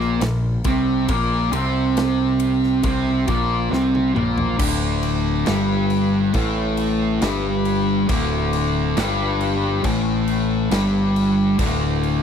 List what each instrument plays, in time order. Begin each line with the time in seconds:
Already playing: picked electric bass A#1, distorted electric guitar A#2 A#3
0.01 snare
0.21 picked electric bass A#1, distorted electric guitar A#2, snare, ride
0.64 picked electric bass C2, distorted electric guitar C3 C4, kick, ride
1.08 picked electric bass A#1, distorted electric guitar A#2 A#3, kick, ride
1.51 picked electric bass C2, distorted electric guitar C3 C4, ride
1.97 snare, ride
2.40 ride
2.63 snare
2.83 picked electric bass C2, distorted electric guitar C3 C4, kick, ride
3.27 picked electric bass A#1, distorted electric guitar A#2 A#3, kick, ride
3.71 picked electric bass C2, distorted electric guitar C3 C4, snare
3.95 high tom
4.14 picked electric bass A#1, distorted electric guitar A#2 A#3, mid tom
4.38 floor tom
4.58 picked electric bass D1, distorted electric guitar D2 D3, kick, crash
5.03 crash
5.46 picked electric bass G1, distorted electric guitar G2 G3, snare, crash
5.90 crash
6.34 picked electric bass A1, distorted electric guitar A2 A3, kick, crash
6.77 crash
7.21 picked electric bass G1, distorted electric guitar G2 G3, snare, crash
7.65 crash
8.08 picked electric bass D1, distorted electric guitar D2 D3, kick, crash
8.53 crash
8.96 picked electric bass G1, distorted electric guitar G2 G3, snare, crash
9.41 crash
9.83 picked electric bass A1, distorted electric guitar A2 A3, kick, crash
10.28 crash
10.70 picked electric bass G1, distorted electric guitar G2 G3, snare, crash
11.16 crash
11.58 picked electric bass D1, distorted electric guitar D2 D3, kick, crash
12.03 crash